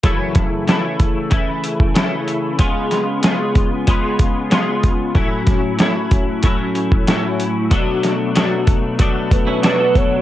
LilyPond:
<<
  \new Staff \with { instrumentName = "Soft synth lead" } { \time 4/4 \key fis \minor \tempo 4 = 94 r1 | r1 | r1 | r2 r8 b'4 cis''8 | }
  \new Staff \with { instrumentName = "Clean electric guitar" } { \time 4/4 \key fis \minor r1 | r1 | r1 | r2 r8. <cis' e'>16 <d' fis'>16 <fis' a'>8. | }
  \new Staff \with { instrumentName = "Clean electric guitar" } { \clef bass \time 4/4 \key fis \minor <fis, cis e a e'>4 <cis e a e'>4 <cis e a e'>4 <cis e a e'>4 | <cis gis b eis'>4 <cis gis b eis'>4 <cis gis b eis'>4 <cis gis b eis'>4 | <a, fis cis' e'>4 <a, fis cis' e'>4 <a, fis cis' e'>4 <a, fis cis' e'>4 | <b, fis a d'>4 <b, fis a d'>4 <b, fis a d'>4 <b, fis a d'>4 | }
  \new DrumStaff \with { instrumentName = "Drums" } \drummode { \time 4/4 <hh bd>8 <hh bd sn>8 <hh sn>8 <hh bd>8 <hh bd>8 hh16 bd16 <hh sn>8 hh8 | <hh bd>8 <hh sn>8 <hh sn>8 <hh bd>8 <hh bd>8 <hh bd>8 <hh sn>8 <hh bd>8 | <hh bd>8 <hh bd sn>8 <hh sn>8 <hh bd>8 <hh bd>8 hh16 bd16 <hh sn>8 hh8 | <hh bd>8 <hh sn>8 <hh sn>8 <hh bd>8 <hh bd>8 <hh bd>8 <hh sn>8 <hh bd>8 | }
>>